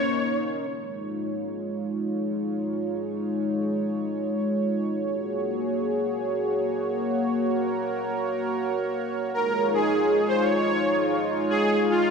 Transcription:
0.00 0.65 A#3 medium
0.00 0.64 C#4 medium
0.00 0.66 D#4 medium
0.00 0.38 C#5 loud
0.00 0.64 C#5 medium
0.69 4.97 G#3 medium
0.69 4.97 D#4 medium
0.69 4.97 F4 medium
0.69 9.30 C#5 medium
5.01 9.30 A#3 medium
5.01 9.30 F#4 medium
5.01 7.15 G#4 medium
7.17 9.31 A#4 medium
9.33 12.10 G#3 medium
9.33 12.10 D#4 medium
9.33 12.10 F4 medium
9.33 9.75 A#4 loud
9.33 12.10 C#5 medium
9.74 10.30 G#4 medium
10.28 10.42 C5 loud
10.42 11.19 C#5 loud
11.50 11.92 G#4 loud
11.90 12.10 F4 loud

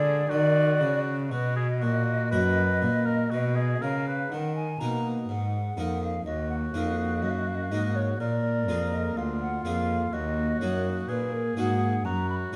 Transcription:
0.00 0.26 D3 medium
0.00 0.30 D3 medium
0.00 0.26 G#3 soft
0.00 0.26 F4 medium
0.00 0.32 G#4 medium
0.00 0.27 A#4 soft
0.00 0.28 D5 loud
0.29 0.82 D#3 medium
0.29 0.77 D#3 medium
0.29 1.21 F#4 medium
0.29 1.00 D5 loud
0.81 1.33 C#3 medium
0.81 1.27 C#3 medium
1.30 1.83 B2 medium
1.30 1.78 B2 medium
1.30 1.55 F#4 medium
1.30 3.78 D#5 medium
1.56 1.68 G#4 medium
1.81 2.34 A#2 medium
1.81 2.28 A#2 medium
1.81 2.30 F#4 medium
2.31 2.78 F#2 medium
2.31 2.83 F#2 medium
2.31 3.76 F#4 soft
2.31 3.76 A#4 medium
2.31 3.07 B4 loud
2.82 3.28 A#2 medium
2.82 3.32 A#2 medium
3.06 3.32 A#4 medium
3.30 3.78 B2 medium
3.30 3.81 B2 medium
3.30 3.58 F#4 medium
3.56 3.83 G#4 medium
3.82 4.31 C#3 medium
3.82 4.28 C#3 medium
3.82 4.07 A#4 medium
3.82 4.33 F5 medium
4.07 4.31 B4 medium
4.31 4.77 D#3 medium
4.31 4.77 D#3 soft
4.31 4.55 F#5 medium
4.55 4.81 G#5 medium
4.80 5.25 B2 soft
4.80 5.29 B2 soft
4.80 5.16 A#3 soft
4.80 5.51 D#4 soft
4.80 5.51 A#4 soft
4.80 5.07 A#5 medium
5.29 5.74 G#2 soft
5.29 5.77 G#2 medium
5.29 6.04 F#5 medium
5.77 6.22 F2 soft
5.77 6.25 F2 soft
5.77 6.12 A#3 soft
5.77 6.13 D#4 soft
5.77 6.13 A#4 soft
6.02 6.25 F5 medium
6.25 6.70 D#2 soft
6.25 6.74 D#2 medium
6.25 8.16 F#4 medium
6.25 6.49 D#5 medium
6.50 6.56 F#5 medium
6.74 7.19 F2 soft
6.74 7.24 F2 soft
6.74 7.44 A#3 soft
6.74 7.44 D#4 soft
6.74 7.45 A#4 soft
6.74 7.24 F5 medium
7.22 7.67 F#2 soft
7.22 7.73 F#2 medium
7.22 7.32 D#5 medium
7.30 7.41 F5 medium
7.39 7.49 D#5 medium
7.47 7.57 F5 medium
7.55 7.64 D#5 medium
7.63 7.73 F5 medium
7.71 8.19 G#2 soft
7.71 8.16 G#2 soft
7.71 8.07 A#3 soft
7.71 8.07 D#4 soft
7.71 8.07 A#4 soft
7.71 7.97 D#5 medium
7.96 8.19 C#5 medium
8.20 8.70 A#2 soft
8.20 8.65 A#2 soft
8.20 9.19 A#4 medium
8.20 8.94 D5 medium
8.68 9.13 F2 soft
8.68 9.16 F2 soft
8.68 9.38 A#3 soft
8.68 9.38 F4 soft
8.68 9.38 G#4 soft
8.93 9.16 D#5 medium
9.17 9.64 D2 medium
9.17 9.61 D2 soft
9.17 10.14 F4 medium
9.17 9.23 F5 medium
9.41 9.65 F#5 medium
9.65 10.09 F2 soft
9.65 10.12 F2 soft
9.65 10.00 A#3 soft
9.65 10.00 F4 soft
9.65 10.00 G#4 soft
9.65 10.15 F5 medium
10.13 10.57 D#2 soft
10.13 10.60 D#2 medium
10.13 11.11 F#4 medium
10.13 10.60 D#5 medium
10.61 11.05 F#2 soft
10.61 11.08 F#2 medium
10.61 11.30 A#3 soft
10.61 11.31 D#4 soft
10.61 11.31 F#4 soft
10.61 10.87 C#5 medium
11.09 11.56 A#2 soft
11.09 11.53 A#2 soft
11.09 12.05 G#4 soft
11.09 11.34 B4 medium
11.32 11.56 A#4 medium
11.57 12.04 G#2 medium
11.57 12.01 G#2 soft
11.57 11.91 A#3 soft
11.57 11.92 D#4 soft
11.57 11.92 F#4 soft
11.57 12.06 F#5 medium
12.05 12.52 F#2 medium
12.05 12.49 F#2 soft
12.05 12.56 F#4 medium
12.05 12.29 A#5 medium
12.30 12.36 B5 medium
12.52 12.56 G#2 soft
12.52 12.56 A#3 soft
12.52 12.56 C#6 medium

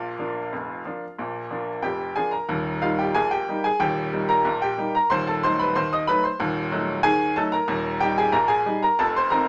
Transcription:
0.00 0.14 A#1 medium
0.00 0.13 A#2 medium
0.00 2.13 F4 medium
0.00 2.16 F5 medium
0.18 0.37 F3 soft
0.18 0.37 A#3 soft
0.18 0.38 D4 soft
0.52 0.80 F1 medium
0.52 0.80 F2 medium
0.85 1.03 F3 soft
0.85 1.03 A#3 soft
0.85 1.04 D4 soft
1.19 1.46 A#1 medium
1.19 1.46 A#2 medium
1.50 1.69 F3 soft
1.50 1.69 A#3 soft
1.50 1.69 D4 soft
1.82 2.11 F1 medium
1.82 2.11 F2 medium
1.82 2.14 G4 medium
1.82 2.16 G5 medium
2.16 2.34 F3 soft
2.16 2.34 A#3 soft
2.16 2.35 D4 soft
2.16 2.32 G#4 medium
2.16 2.32 G#5 medium
2.31 2.78 A#4 medium
2.31 2.81 A#5 medium
2.49 2.77 D#1 medium
2.49 2.77 D#2 medium
2.82 3.00 G3 medium
2.82 3.00 A#3 soft
2.82 3.00 D#4 medium
2.82 2.97 F4 medium
2.82 2.98 F5 medium
2.99 3.14 G4 medium
2.99 3.15 G5 medium
3.15 3.42 A#1 medium
3.15 3.42 A#2 medium
3.15 3.30 G#4 medium
3.15 3.31 G#5 medium
3.31 3.62 G4 medium
3.31 3.63 G5 medium
3.49 3.66 G3 medium
3.49 3.66 A#3 medium
3.49 3.66 D#4 medium
3.64 3.80 G#4 medium
3.64 3.80 G#5 medium
3.80 4.07 D#1 medium
3.80 4.07 D#2 medium
3.80 4.25 G4 medium
3.80 4.28 G5 loud
4.13 4.31 G3 soft
4.13 4.30 A#3 medium
4.13 4.31 D#4 medium
4.29 4.59 A#4 medium
4.29 4.61 A#5 loud
4.45 4.72 A#1 medium
4.45 4.72 A#2 medium
4.62 4.92 G4 medium
4.62 4.94 G5 medium
4.78 4.95 G3 soft
4.78 4.96 A#3 medium
4.78 4.96 D#4 medium
4.95 5.10 A#4 medium
4.95 5.10 A#5 medium
5.10 5.38 D#1 medium
5.10 5.38 D#2 medium
5.10 5.26 C5 medium
5.10 5.26 C6 loud
5.27 5.42 A4 medium
5.27 5.43 A5 medium
5.43 5.61 F#3 medium
5.43 5.61 A3 medium
5.43 5.62 D#4 medium
5.43 5.58 C5 medium
5.43 5.59 C6 loud
5.59 5.75 B4 medium
5.59 5.75 B5 loud
5.75 6.03 D#2 medium
5.75 6.02 D#3 medium
5.75 5.90 C5 medium
5.75 5.91 C6 loud
5.93 6.07 D#5 medium
5.93 6.08 D#6 loud
6.07 6.26 F#3 medium
6.07 6.25 A3 medium
6.07 6.26 D#4 medium
6.07 6.23 B4 medium
6.07 6.23 B5 loud
6.24 6.69 C5 medium
6.24 6.72 C6 medium
6.40 6.67 D#1 medium
6.40 6.67 D#2 loud
6.72 6.89 F#3 medium
6.72 6.89 A3 medium
6.72 6.90 D#4 medium
7.03 7.31 D#2 medium
7.03 7.31 D#3 medium
7.03 7.34 G#4 medium
7.03 7.36 G#5 loud
7.36 7.54 F#3 medium
7.36 7.55 A3 medium
7.36 7.55 D#4 medium
7.36 7.52 A4 medium
7.36 7.52 A5 loud
7.52 7.98 A#4 medium
7.52 8.01 A#5 loud
7.68 7.96 D#1 medium
7.68 7.96 D#2 medium
8.00 8.19 G3 medium
8.00 8.19 D#4 medium
8.00 8.17 G4 medium
8.00 8.17 G5 loud
8.18 8.33 G#4 medium
8.18 8.34 G#5 medium
8.32 8.61 A#1 medium
8.32 8.61 A#2 medium
8.32 8.49 A#4 medium
8.32 8.49 A#5 loud
8.48 8.80 G#4 medium
8.48 8.82 G#5 medium
8.66 8.84 G3 medium
8.66 8.84 D#4 medium
8.83 8.98 A#4 medium
8.83 8.99 A#5 loud
8.99 9.27 F1 medium
8.99 9.27 F2 medium
8.99 9.15 A4 medium
8.99 9.15 A5 loud
9.16 9.32 C5 medium
9.16 9.32 C6 loud
9.30 9.48 F3 medium
9.30 9.48 C4 medium
9.30 9.48 D#4 medium
9.30 9.48 A#4 medium
9.30 9.48 A#5 loud

